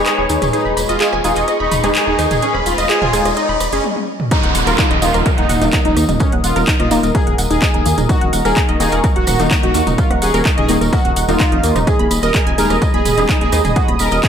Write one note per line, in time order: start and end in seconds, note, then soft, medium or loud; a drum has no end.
0.00 1.22 G#3 medium
0.00 1.22 D#4 medium
0.00 1.22 G#4 medium
0.00 3.80 G#4 medium
0.00 3.80 B4 medium
0.00 0.44 C#5 loud
0.00 3.80 D#5 medium
0.00 0.50 B5 medium
0.00 riser medium
0.06 0.11 G#4 loud
0.06 cross-stick medium
0.06 clap loud
0.06 closed hi-hat medium
0.06 tambourine soft
0.18 0.26 D#1 medium
0.18 0.29 G#4 medium
0.29 0.38 D#2 loud
0.29 0.41 D#4 medium
0.29 open hi-hat loud
0.29 tambourine medium
0.42 0.49 D#1 medium
0.42 0.50 G#4 medium
0.42 cross-stick medium
0.42 closed hi-hat medium
0.42 mid tom loud
0.42 tambourine medium
0.53 0.73 D#4 loud
0.53 0.58 G#4 medium
0.53 3.81 C#6 medium
0.53 closed hi-hat medium
0.53 tambourine soft
0.65 0.73 D#1 medium
0.65 0.73 B5 medium
0.77 0.85 D#1 loud
0.77 0.82 B5 medium
0.77 cross-stick medium
0.77 open hi-hat loud
0.77 tambourine medium
0.89 0.97 D#1 medium
0.89 1.08 F4 loud
0.89 0.94 D#5 loud
0.89 closed hi-hat medium
0.89 tambourine soft
1.00 1.06 G#4 loud
1.00 clap loud
1.00 closed hi-hat medium
1.00 tambourine soft
1.13 1.20 D#1 medium
1.13 1.23 G#5 loud
1.13 cross-stick medium
1.24 1.32 D#1 loud
1.24 1.43 G#3 medium
1.24 1.43 D#4 medium
1.24 1.43 F4 loud
1.24 1.43 G#4 medium
1.24 1.29 G#5 medium
1.24 open hi-hat loud
1.24 tambourine medium
1.36 1.44 D#1 medium
1.36 1.44 D#5 medium
1.36 closed hi-hat medium
1.36 tambourine medium
1.48 1.53 D#5 medium
1.48 cross-stick medium
1.48 closed hi-hat medium
1.48 tambourine soft
1.60 1.67 D#1 medium
1.60 1.86 D#4 loud
1.60 1.68 B5 medium
1.72 1.79 D#1 loud
1.72 1.77 B5 medium
1.72 mid tom medium
1.72 open hi-hat loud
1.72 tambourine medium
1.84 1.91 D#1 medium
1.84 3.11 G#3 medium
1.84 3.11 D#4 medium
1.84 3.11 G#4 medium
1.84 1.92 G#4 medium
1.84 cross-stick medium
1.84 closed hi-hat medium
1.84 tambourine soft
1.95 2.00 G#4 loud
1.95 clap loud
1.95 closed hi-hat medium
1.95 tambourine soft
2.07 2.15 D#1 medium
2.07 2.26 D#4 medium
2.07 2.18 G#4 medium
2.19 2.26 D#2 loud
2.19 2.30 D#4 medium
2.19 cross-stick medium
2.19 open hi-hat loud
2.19 tambourine medium
2.31 2.38 D#1 medium
2.31 2.39 G#4 medium
2.31 closed hi-hat medium
2.31 mid tom medium
2.31 tambourine soft
2.42 2.55 C#4 medium
2.42 2.47 G#4 medium
2.42 closed hi-hat medium
2.42 tambourine soft
2.55 2.62 D#1 medium
2.55 2.62 B5 medium
2.55 cross-stick medium
2.66 2.74 D#1 loud
2.66 2.85 F4 loud
2.66 2.71 B5 medium
2.66 open hi-hat loud
2.66 tambourine medium
2.78 2.85 D#1 loud
2.78 2.83 D#5 loud
2.78 closed hi-hat medium
2.78 tambourine medium
2.90 2.95 G#4 loud
2.90 cross-stick medium
2.90 clap loud
2.90 closed hi-hat medium
2.90 tambourine soft
3.02 3.09 D#1 medium
3.02 3.21 F4 medium
3.02 3.12 G#5 loud
3.02 mid tom medium
3.13 3.21 D#1 loud
3.13 3.32 G#3 medium
3.13 3.32 D#4 medium
3.13 3.32 G#4 medium
3.13 3.18 G#5 medium
3.13 open hi-hat loud
3.13 tambourine medium
3.25 3.33 D#1 medium
3.25 3.33 D#5 medium
3.25 cross-stick medium
3.25 closed hi-hat medium
3.25 tambourine medium
3.36 3.56 D#4 medium
3.36 3.42 D#5 medium
3.36 closed hi-hat medium
3.36 tambourine soft
3.49 3.56 D#1 medium
3.49 3.57 B5 medium
3.60 3.68 D#1 loud
3.60 3.65 B5 medium
3.60 cross-stick medium
3.60 open hi-hat loud
3.60 tambourine loud
3.72 3.80 F1 medium
3.72 3.84 C#4 medium
3.72 3.81 G#4 medium
3.72 closed hi-hat medium
3.72 tambourine soft
3.84 high tom medium
3.96 high tom medium
4.20 mid tom medium
4.31 4.36 D#4 medium
4.31 4.51 D#4 loud
4.31 11.83 A#4 medium
4.31 14.28 D#5 medium
4.31 11.83 A#5 medium
4.31 8.05 D#6 medium
4.31 kick loud
4.31 cross-stick soft
4.31 closed hi-hat medium
4.31 tambourine soft
4.31 downlifter medium
4.43 4.51 D#1 medium
4.43 4.51 F#5 medium
4.43 closed hi-hat soft
4.55 4.63 D#1 loud
4.55 4.60 F#5 medium
4.55 open hi-hat loud
4.55 tambourine medium
4.67 4.74 D#1 medium
4.67 4.86 F4 loud
4.67 4.72 A#4 loud
4.67 closed hi-hat soft
4.67 tambourine medium
4.78 4.84 D#4 loud
4.78 kick loud
4.78 clap loud
4.78 closed hi-hat medium
4.78 tambourine soft
4.91 4.98 D#1 medium
4.91 5.01 D#5 loud
4.91 closed hi-hat soft
5.02 5.10 D#1 loud
5.02 5.21 D#3 medium
5.02 5.21 A#3 medium
5.02 5.21 D#4 medium
5.02 5.21 F4 loud
5.02 5.07 D#5 medium
5.02 open hi-hat loud
5.02 tambourine loud
5.14 5.22 D#1 medium
5.14 5.22 A#4 medium
5.14 cross-stick medium
5.14 closed hi-hat soft
5.14 tambourine medium
5.26 5.31 A#4 medium
5.26 kick loud
5.26 closed hi-hat medium
5.26 tambourine soft
5.38 5.45 D#1 medium
5.38 5.63 D#4 loud
5.38 5.46 F#5 medium
5.38 closed hi-hat soft
5.49 5.57 D#1 loud
5.49 5.54 F#5 medium
5.49 mid tom medium
5.49 open hi-hat loud
5.49 tambourine medium
5.62 5.69 D#1 medium
5.62 6.88 D#3 medium
5.62 6.88 A#3 medium
5.62 6.88 D#4 medium
5.62 5.69 D#4 medium
5.62 closed hi-hat soft
5.62 tambourine medium
5.73 5.78 D#4 loud
5.73 kick loud
5.73 clap loud
5.73 closed hi-hat medium
5.73 tambourine soft
5.85 5.93 D#1 medium
5.85 5.96 D#4 medium
5.85 6.04 D#4 loud
5.85 closed hi-hat soft
5.97 6.04 D#2 loud
5.97 6.08 A#3 medium
5.97 cross-stick soft
5.97 open hi-hat loud
5.97 tambourine medium
6.09 6.16 D#1 medium
6.09 6.17 D#4 medium
6.09 closed hi-hat soft
6.09 mid tom medium
6.09 tambourine medium
6.20 6.33 C#4 medium
6.20 6.25 D#4 medium
6.20 kick loud
6.20 closed hi-hat medium
6.20 tambourine soft
6.32 6.40 D#1 medium
6.32 6.40 F#5 medium
6.32 closed hi-hat soft
6.44 6.52 D#1 loud
6.44 6.63 F4 loud
6.44 6.49 F#5 medium
6.44 open hi-hat loud
6.44 tambourine loud
6.56 6.63 D#1 medium
6.56 6.61 A#4 loud
6.56 closed hi-hat soft
6.56 tambourine soft
6.68 6.73 D#4 loud
6.68 kick loud
6.68 clap loud
6.68 closed hi-hat medium
6.68 tambourine soft
6.80 6.87 D#1 medium
6.80 6.99 F4 loud
6.80 6.90 D#5 loud
6.80 cross-stick medium
6.80 closed hi-hat soft
6.80 mid tom medium
6.91 6.99 D#1 loud
6.91 7.10 D#3 medium
6.91 7.10 A#3 medium
6.91 7.10 D#4 medium
6.91 6.96 D#5 medium
6.91 open hi-hat loud
6.91 tambourine medium
7.03 7.11 D#1 medium
7.03 7.11 A#4 medium
7.03 closed hi-hat soft
7.03 tambourine medium
7.15 7.34 G#4 medium
7.15 7.20 A#4 medium
7.15 kick loud
7.15 closed hi-hat medium
7.15 tambourine soft
7.27 7.34 D#1 medium
7.27 7.35 F#5 medium
7.27 closed hi-hat soft
7.38 7.46 D#1 loud
7.38 7.43 F#5 medium
7.38 open hi-hat loud
7.38 tambourine medium
7.51 7.58 D#1 medium
7.51 7.58 D#4 medium
7.51 8.00 G#4 medium
7.51 closed hi-hat soft
7.51 tambourine medium
7.62 7.67 D#4 loud
7.62 kick loud
7.62 cross-stick medium
7.62 clap loud
7.62 closed hi-hat medium
7.62 tambourine soft
7.74 7.82 D#1 medium
7.74 7.85 D#4 medium
7.74 closed hi-hat soft
7.86 7.94 D#2 loud
7.86 7.97 A#3 medium
7.86 open hi-hat loud
7.86 tambourine medium
7.98 8.05 D#1 loud
7.98 8.06 D#4 medium
7.98 closed hi-hat soft
7.98 mid tom medium
7.98 tambourine medium
8.09 8.14 D#4 medium
8.09 8.29 F#4 loud
8.09 11.83 C#6 medium
8.09 kick loud
8.09 closed hi-hat medium
8.09 tambourine soft
8.21 8.29 D#1 medium
8.21 8.29 F#5 medium
8.21 closed hi-hat soft
8.33 8.41 D#1 loud
8.33 8.38 F#5 medium
8.33 open hi-hat loud
8.33 tambourine medium
8.45 8.52 D#1 loud
8.45 8.64 G#4 loud
8.45 8.50 A#4 loud
8.45 cross-stick medium
8.45 closed hi-hat soft
8.45 tambourine medium
8.57 8.62 D#4 loud
8.57 kick loud
8.57 clap loud
8.57 closed hi-hat medium
8.57 tambourine soft
8.69 8.76 D#1 medium
8.69 8.79 D#5 loud
8.69 closed hi-hat soft
8.80 8.88 D#1 loud
8.80 8.99 D#3 medium
8.80 8.99 A#3 medium
8.80 8.99 D#4 medium
8.80 9.00 G#4 loud
8.80 8.85 D#5 medium
8.80 open hi-hat loud
8.80 tambourine medium
8.92 9.00 D#1 medium
8.92 9.00 A#4 medium
8.92 closed hi-hat soft
8.92 tambourine medium
9.04 9.09 A#4 medium
9.04 kick loud
9.04 closed hi-hat medium
9.04 tambourine soft
9.16 9.23 D#1 medium
9.16 9.41 F#4 loud
9.16 9.24 F#5 medium
9.16 closed hi-hat soft
9.27 9.35 D#1 loud
9.27 9.32 F#5 medium
9.27 cross-stick medium
9.27 mid tom medium
9.27 open hi-hat loud
9.27 tambourine loud
9.40 9.47 D#1 medium
9.40 10.66 D#3 medium
9.40 10.66 A#3 medium
9.40 10.66 D#4 medium
9.40 9.47 D#4 medium
9.40 closed hi-hat soft
9.40 tambourine medium
9.51 9.56 D#4 loud
9.51 kick loud
9.51 clap loud
9.51 closed hi-hat medium
9.51 tambourine soft
9.63 9.71 D#1 medium
9.63 9.74 D#4 medium
9.63 9.82 F#4 loud
9.63 closed hi-hat soft
9.74 9.83 D#2 loud
9.74 9.86 A#3 medium
9.74 open hi-hat loud
9.74 tambourine loud
9.87 9.94 D#1 loud
9.87 9.95 D#4 medium
9.87 closed hi-hat soft
9.87 mid tom medium
9.87 tambourine medium
9.98 10.03 D#4 medium
9.98 10.12 F4 medium
9.98 kick loud
9.98 closed hi-hat medium
9.98 tambourine soft
10.10 10.18 D#1 medium
10.10 10.18 F#5 medium
10.10 cross-stick medium
10.10 closed hi-hat soft
10.22 10.30 D#1 loud
10.22 10.41 G#4 loud
10.22 10.27 F#5 medium
10.22 open hi-hat loud
10.22 tambourine medium
10.34 10.41 D#1 medium
10.34 10.39 A#4 loud
10.34 closed hi-hat soft
10.34 tambourine medium
10.45 10.51 D#4 loud
10.45 kick loud
10.45 clap loud
10.45 closed hi-hat medium
10.45 tambourine soft
10.58 10.65 D#1 medium
10.58 10.77 G#4 loud
10.58 10.68 D#5 loud
10.58 closed hi-hat soft
10.58 mid tom medium
10.68 10.77 D#1 loud
10.68 10.88 D#3 medium
10.68 10.88 A#3 medium
10.68 10.88 D#4 medium
10.68 10.74 D#5 medium
10.68 open hi-hat loud
10.68 tambourine loud
10.81 10.89 D#1 medium
10.81 10.89 A#4 medium
10.81 closed hi-hat soft
10.81 tambourine medium
10.93 11.12 F#4 medium
10.93 10.98 A#4 medium
10.93 kick loud
10.93 cross-stick medium
10.93 closed hi-hat medium
10.93 tambourine soft
11.05 11.12 D#1 medium
11.05 11.13 F#5 medium
11.05 closed hi-hat soft
11.16 11.24 D#1 loud
11.16 11.21 F#5 medium
11.16 open hi-hat loud
11.16 tambourine loud
11.28 11.36 D#1 medium
11.28 11.86 D#3 medium
11.28 11.86 A#3 medium
11.28 11.86 D#4 medium
11.28 11.36 D#4 medium
11.28 11.78 F4 loud
11.28 closed hi-hat soft
11.28 tambourine medium
11.40 11.45 D#4 loud
11.40 kick loud
11.40 clap loud
11.40 closed hi-hat medium
11.40 tambourine soft
11.52 11.59 F1 medium
11.52 11.63 D#4 medium
11.52 closed hi-hat soft
11.63 11.71 D#2 loud
11.63 11.75 A#3 medium
11.63 open hi-hat loud
11.63 tambourine medium
11.76 11.83 D#1 medium
11.76 11.84 D#4 medium
11.76 cross-stick medium
11.76 closed hi-hat soft
11.76 mid tom medium
11.76 tambourine medium
11.87 11.92 G#4 medium
11.87 12.06 G#4 loud
11.87 14.28 G#4 medium
11.87 14.28 B5 medium
11.87 14.28 D#6 medium
11.87 kick loud
11.87 cross-stick medium
11.87 closed hi-hat medium
11.87 tambourine soft
11.99 12.07 D#1 medium
11.99 12.07 B5 medium
11.99 closed hi-hat soft
12.11 12.19 D#1 loud
12.11 12.16 B5 medium
12.11 open hi-hat loud
12.11 tambourine loud
12.23 12.30 D#1 medium
12.23 12.42 A#4 loud
12.23 12.28 D#5 loud
12.23 closed hi-hat soft
12.23 tambourine soft
12.34 12.39 G#4 loud
12.34 kick loud
12.34 clap loud
12.34 closed hi-hat medium
12.34 tambourine soft
12.47 12.54 D#1 medium
12.47 12.57 G#5 loud
12.47 closed hi-hat soft
12.58 12.66 D#1 loud
12.58 12.77 G#3 medium
12.58 12.77 D#4 medium
12.58 12.77 G#4 medium
12.58 12.77 A#4 loud
12.58 12.63 G#5 medium
12.58 open hi-hat loud
12.58 tambourine medium
12.70 12.78 D#1 medium
12.70 12.78 D#5 medium
12.70 cross-stick medium
12.70 closed hi-hat soft
12.70 tambourine medium
12.82 12.87 D#5 medium
12.82 kick loud
12.82 closed hi-hat medium
12.82 tambourine soft
12.94 13.01 D#1 medium
12.94 13.19 G#4 loud
12.94 13.02 B5 medium
12.94 closed hi-hat soft
13.05 13.13 D#1 loud
13.05 13.10 B5 medium
13.05 mid tom medium
13.05 open hi-hat loud
13.05 tambourine loud
13.17 13.25 D#1 medium
13.17 14.28 G#3 medium
13.17 14.28 D#4 medium
13.17 14.28 G#4 medium
13.17 13.25 G#4 medium
13.17 closed hi-hat soft
13.17 tambourine soft
13.29 13.37 D#4 medium
13.29 kick loud
13.29 clap loud
13.29 closed hi-hat medium
13.29 tambourine soft
13.41 13.49 D#1 medium
13.41 13.60 G#4 loud
13.41 13.52 G#4 medium
13.41 closed hi-hat soft
13.52 13.60 D#2 loud
13.52 13.64 D#4 medium
13.52 cross-stick medium
13.52 open hi-hat loud
13.52 tambourine medium
13.65 13.72 D#1 medium
13.65 13.73 G#4 medium
13.65 closed hi-hat soft
13.65 mid tom medium
13.65 tambourine soft
13.76 13.89 F#4 medium
13.76 13.81 G#4 medium
13.76 kick loud
13.76 closed hi-hat medium
13.76 tambourine soft
13.88 13.96 D#1 medium
13.88 13.96 B5 medium
13.88 closed hi-hat soft
13.99 14.08 D#1 loud
13.99 14.19 A#4 loud
13.99 14.05 B5 medium
13.99 open hi-hat loud
13.99 tambourine medium
14.11 14.19 D#1 medium
14.11 14.17 D#5 loud
14.11 closed hi-hat soft
14.11 tambourine soft
14.23 14.28 G#4 loud
14.23 kick loud
14.23 clap loud
14.23 closed hi-hat medium
14.23 tambourine soft